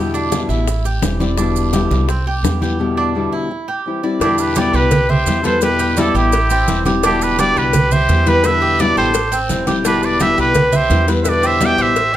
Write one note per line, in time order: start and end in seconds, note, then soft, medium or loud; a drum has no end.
0.00 0.43 E2 medium
0.00 0.30 B2 medium
0.00 0.31 D3 medium
0.00 0.31 G3 medium
0.00 0.31 B3 medium
0.00 0.32 E4 medium
0.00 0.13 G4 medium
0.14 0.48 D4 medium
0.14 high bongo soft
0.14 high conga soft
0.14 maracas medium
0.31 0.66 B2 medium
0.31 0.66 D3 medium
0.31 0.67 G3 medium
0.31 0.67 B3 medium
0.31 0.67 E4 medium
0.31 high bongo medium
0.31 high conga medium
0.31 short guiro medium
0.31 maracas medium
0.49 0.98 A1 medium
0.49 0.83 E4 medium
0.49 high bongo soft
0.49 high conga soft
0.49 short guiro medium
0.49 maracas soft
0.67 muted nylon-string guitar stroke medium
0.67 high bongo medium
0.67 high conga soft
0.67 long guiro medium
0.67 maracas medium
0.85 1.19 G4 medium
0.85 high bongo soft
0.85 high conga soft
0.85 maracas medium
1.01 1.85 E1 medium
1.01 1.19 E3 medium
1.01 1.19 G3 medium
1.01 1.19 C4 medium
1.01 1.18 E4 medium
1.01 high bongo medium
1.01 low bongo medium
1.01 high conga medium
1.01 short guiro medium
1.01 maracas medium
1.20 1.37 G3 medium
1.20 1.37 C4 medium
1.20 1.37 E4 medium
1.20 1.37 D5 medium
1.20 high conga medium
1.20 short guiro medium
1.20 maracas soft
1.37 1.72 B2 medium
1.37 1.72 D3 medium
1.37 1.73 G3 medium
1.37 1.73 B3 medium
1.37 1.72 D4 medium
1.37 1.73 E4 medium
1.37 high bongo medium
1.37 high conga soft
1.37 long guiro medium
1.37 maracas medium
1.56 high conga soft
1.56 maracas medium
1.73 2.08 B2 medium
1.73 2.08 D3 medium
1.73 2.08 G3 medium
1.73 2.08 B3 medium
1.73 2.09 E4 medium
1.73 2.07 G4 medium
1.73 high bongo medium
1.73 high conga medium
1.73 short guiro medium
1.73 maracas medium
1.90 2.40 C2 medium
1.90 high conga medium
1.90 short guiro medium
1.90 maracas soft
2.08 2.26 C4 medium
2.08 muted nylon-string guitar stroke medium
2.08 high bongo medium
2.08 high conga soft
2.08 long guiro medium
2.08 maracas medium
2.26 2.61 G4 medium
2.26 high conga soft
2.43 3.26 E2 loud
2.43 2.61 E3 medium
2.43 2.61 G3 medium
2.43 2.60 B3 medium
2.43 2.60 E4 medium
2.43 high bongo medium
2.43 low bongo medium
2.43 high conga medium
2.43 short guiro medium
2.43 maracas medium
2.61 2.79 E3 medium
2.61 2.79 G3 medium
2.61 2.79 B3 medium
2.61 2.78 E4 medium
2.61 2.96 G4 medium
2.61 high conga medium
2.61 short guiro medium
2.61 maracas soft
2.79 3.14 B2 medium
2.79 3.14 D3 medium
2.79 3.14 G3 medium
2.79 3.15 B3 medium
2.79 3.15 E4 medium
2.97 3.31 D4 medium
3.15 3.50 B2 medium
3.15 3.50 D3 medium
3.15 3.50 G3 medium
3.15 3.50 B3 medium
3.15 3.50 E4 medium
3.32 3.67 E4 medium
3.51 muted nylon-string guitar stroke medium
3.68 4.02 G4 medium
3.86 4.03 E3 soft
3.86 4.03 G3 soft
3.86 4.03 C4 medium
3.86 4.03 E4 medium
4.03 4.21 G3 medium
4.03 4.21 C4 medium
4.03 4.20 E4 medium
4.03 4.20 D5 medium
4.20 4.70 E2 medium
4.20 4.55 B2 medium
4.20 4.56 D3 medium
4.20 4.56 G3 medium
4.20 4.57 B3 medium
4.20 4.55 D4 medium
4.20 4.40 E4 medium
4.20 4.57 E4 medium
4.20 4.41 G4 medium
4.20 cowbell loud
4.20 high conga soft
4.20 long guiro medium
4.20 maracas medium
4.38 4.59 G4 medium
4.38 4.60 B4 medium
4.38 high conga soft
4.38 maracas medium
4.55 4.91 B2 medium
4.55 4.91 D3 medium
4.55 4.91 G3 medium
4.55 4.90 B3 medium
4.55 4.91 E4 medium
4.55 4.73 G4 medium
4.55 4.75 B4 medium
4.55 4.77 D5 medium
4.55 cowbell medium
4.55 high conga medium
4.55 short guiro medium
4.55 maracas medium
4.73 5.23 C2 loud
4.73 5.09 G4 medium
4.73 5.08 B4 medium
4.73 5.11 B4 loud
4.73 high conga soft
4.73 short guiro medium
4.73 maracas soft
4.91 cowbell loud
4.91 high conga soft
4.91 low conga medium
4.91 long guiro medium
4.91 maracas medium
5.09 5.43 G4 medium
5.09 5.45 C5 medium
5.09 5.43 E5 medium
5.09 high conga soft
5.09 low conga medium
5.26 6.09 E2 loud
5.26 5.43 E3 medium
5.26 5.43 G3 medium
5.26 5.43 B3 medium
5.26 5.42 E4 medium
5.26 cowbell medium
5.26 high conga medium
5.26 short guiro medium
5.26 maracas medium
5.43 5.61 E3 medium
5.43 5.61 G3 medium
5.43 5.61 B3 medium
5.43 5.61 E4 medium
5.43 5.60 A4 medium
5.43 5.78 B4 medium
5.43 5.62 C5 medium
5.43 cowbell medium
5.43 high conga medium
5.43 short guiro medium
5.43 maracas soft
5.61 5.95 B2 medium
5.61 5.96 D3 medium
5.61 5.96 G3 medium
5.61 5.97 B3 medium
5.61 5.97 E4 medium
5.61 5.99 G4 medium
5.61 6.01 B4 medium
5.61 cowbell loud
5.61 high conga soft
5.61 long guiro medium
5.61 maracas medium
5.79 5.97 G4 medium
5.79 high conga soft
5.79 maracas medium
5.96 6.31 B2 medium
5.96 6.32 D3 medium
5.96 6.32 G3 medium
5.96 6.32 B3 medium
5.96 6.14 E4 medium
5.96 6.32 E4 medium
5.96 6.16 A4 loud
5.96 6.14 D5 medium
5.96 cowbell medium
5.96 high conga loud
5.96 short guiro medium
5.96 maracas medium
6.14 6.64 A1 loud
6.14 6.82 E4 medium
6.14 6.49 G4 medium
6.14 6.82 G4 medium
6.14 short guiro medium
6.14 maracas soft
6.32 muted nylon-string guitar stroke medium
6.32 cowbell loud
6.32 high conga soft
6.32 long guiro medium
6.32 maracas medium
6.50 6.85 C4 loud
6.50 high conga soft
6.50 maracas medium
6.68 7.50 E1 loud
6.68 6.85 E3 medium
6.68 6.85 G3 medium
6.68 6.85 C4 medium
6.68 6.84 E4 medium
6.68 cowbell medium
6.68 high conga medium
6.68 short guiro medium
6.68 maracas medium
6.85 7.03 G3 medium
6.85 7.03 C4 medium
6.85 7.02 E4 medium
6.85 7.03 G4 medium
6.85 cowbell medium
6.85 high conga medium
6.85 short guiro medium
6.85 maracas soft
7.03 7.37 B2 medium
7.03 7.38 D3 medium
7.03 7.38 G3 medium
7.03 7.38 B3 medium
7.03 7.37 D4 loud
7.03 7.22 E4 medium
7.03 7.38 E4 medium
7.03 7.24 G4 medium
7.03 cowbell loud
7.03 high conga soft
7.03 long guiro medium
7.03 maracas medium
7.20 7.41 G4 medium
7.20 7.41 B4 medium
7.20 high conga soft
7.20 maracas medium
7.38 7.73 B2 medium
7.38 7.73 D3 medium
7.38 7.73 G3 medium
7.38 7.74 B3 medium
7.38 7.74 E4 medium
7.38 7.56 G4 medium
7.38 7.58 B4 medium
7.38 7.59 D5 loud
7.38 cowbell medium
7.38 high conga medium
7.38 short guiro medium
7.38 maracas medium
7.56 8.05 C2 loud
7.56 7.93 G4 medium
7.56 7.90 B4 medium
7.56 7.93 B4 loud
7.56 high conga soft
7.56 short guiro medium
7.56 maracas soft
7.73 muted nylon-string guitar stroke medium
7.73 cowbell loud
7.73 high conga soft
7.73 low conga medium
7.73 long guiro medium
7.73 maracas medium
7.91 8.27 G4 medium
7.91 8.30 C5 loud
7.91 8.26 E5 medium
7.91 high conga soft
7.91 low conga medium
7.91 maracas medium
8.09 8.91 E2 loud
8.09 8.26 E3 soft
8.09 8.26 G3 medium
8.09 8.26 B3 medium
8.09 8.25 E4 medium
8.09 cowbell medium
8.09 high conga medium
8.09 short guiro medium
8.09 maracas medium
8.26 8.44 E3 medium
8.26 8.44 G3 medium
8.26 8.44 B3 medium
8.26 8.43 E4 medium
8.26 8.46 G4 medium
8.26 8.61 B4 medium
8.26 8.47 B4 loud
8.26 cowbell medium
8.26 high conga medium
8.26 short guiro medium
8.26 maracas soft
8.44 8.78 B2 medium
8.44 8.79 D3 medium
8.44 8.79 G3 medium
8.44 8.79 B3 medium
8.44 8.80 E4 medium
8.44 8.80 B4 loud
8.44 8.82 E5 loud
8.44 cowbell loud
8.44 high conga soft
8.44 long guiro medium
8.44 maracas medium
8.62 8.79 G4 medium
8.62 high conga soft
8.79 9.14 B2 medium
8.79 9.14 D3 medium
8.79 9.13 G3 medium
8.79 9.14 B3 medium
8.79 9.14 E4 medium
8.79 8.97 B4 medium
8.79 8.97 D5 medium
8.79 8.97 D5 loud
8.79 cowbell medium
8.79 high conga loud
8.79 short guiro medium
8.79 maracas medium
8.97 9.46 A1 loud
8.97 9.31 G4 medium
8.97 9.38 A4 medium
8.97 9.38 C5 loud
8.97 high conga soft
8.97 short guiro medium
8.97 maracas soft
9.14 muted nylon-string guitar stroke medium
9.14 cowbell loud
9.14 high conga soft
9.14 long guiro medium
9.14 maracas medium
9.32 9.66 C4 medium
9.32 high conga soft
9.32 maracas medium
9.49 10.32 E1 medium
9.49 9.67 E3 medium
9.49 9.67 G3 medium
9.49 9.66 C4 medium
9.49 9.65 E4 medium
9.49 cowbell medium
9.49 high conga medium
9.49 short guiro medium
9.49 maracas medium
9.67 9.84 G3 medium
9.67 9.84 C4 medium
9.67 9.84 E4 medium
9.67 9.84 G4 medium
9.67 cowbell medium
9.67 high conga medium
9.67 short guiro medium
9.67 maracas soft
9.84 10.19 B2 medium
9.84 10.19 D3 medium
9.84 10.19 G3 medium
9.84 10.20 B3 medium
9.84 10.19 D4 medium
9.84 10.20 E4 medium
9.84 10.04 G4 medium
9.84 10.06 B4 medium
9.84 cowbell loud
9.84 high conga soft
9.84 long guiro medium
9.84 maracas medium
10.02 10.20 B4 medium
10.02 10.23 D5 medium
10.02 high conga soft
10.02 maracas medium
10.20 10.55 B2 medium
10.20 10.55 D3 medium
10.20 10.54 G3 medium
10.20 10.55 B3 medium
10.20 10.55 E4 medium
10.20 10.37 G4 medium
10.20 10.37 B4 medium
10.20 10.39 E5 loud
10.20 cowbell medium
10.20 high conga loud
10.20 short guiro medium
10.20 maracas medium
10.37 10.87 C2 medium
10.37 10.74 G4 medium
10.37 10.72 B4 medium
10.37 10.77 B4 loud
10.37 high conga soft
10.37 short guiro medium
10.37 maracas soft
10.55 muted nylon-string guitar stroke medium
10.55 cowbell loud
10.55 high conga soft
10.55 low conga medium
10.55 long guiro medium
10.55 maracas medium
10.72 11.09 G4 medium
10.72 11.10 C5 loud
10.72 11.07 E5 medium
10.72 high conga soft
10.72 low conga medium
10.72 maracas medium
10.90 11.73 E2 loud
10.90 11.07 E3 medium
10.90 11.07 G3 medium
10.90 11.07 B3 medium
10.90 11.06 E4 medium
10.90 cowbell medium
10.90 high conga medium
10.90 short guiro medium
10.90 maracas medium
11.07 11.26 E3 medium
11.07 11.26 G3 medium
11.07 11.25 B3 medium
11.07 11.25 E4 medium
11.07 11.42 B4 medium
11.07 cowbell medium
11.07 short guiro medium
11.07 maracas soft
11.22 11.29 C5 medium
11.22 11.30 E5 medium
11.22 cowbell loud
11.22 maracas medium
11.26 11.60 B2 medium
11.26 11.60 D3 medium
11.26 11.60 G3 medium
11.26 11.61 B3 medium
11.26 11.61 E4 medium
11.26 11.46 B4 medium
11.26 11.48 D5 loud
11.26 high conga soft
11.26 long guiro medium
11.43 11.60 G4 medium
11.43 11.63 C5 medium
11.43 11.67 E5 loud
11.43 high conga soft
11.43 maracas medium
11.61 11.96 B2 medium
11.61 11.95 D3 medium
11.61 11.95 G3 medium
11.61 11.96 B3 medium
11.61 11.95 E4 medium
11.61 11.78 D5 medium
11.61 11.80 E5 medium
11.61 cowbell medium
11.61 high conga medium
11.61 short guiro medium
11.61 maracas medium
11.65 11.83 G5 loud
11.78 12.17 A1 loud
11.78 12.13 G4 medium
11.78 12.15 C5 medium
11.78 12.17 E5 loud
11.78 high conga soft
11.78 short guiro medium
11.78 maracas soft
11.95 muted nylon-string guitar stroke medium
11.95 cowbell loud
11.95 high conga soft
11.95 long guiro medium
11.95 maracas medium
12.13 12.17 C4 medium
12.13 12.17 E5 medium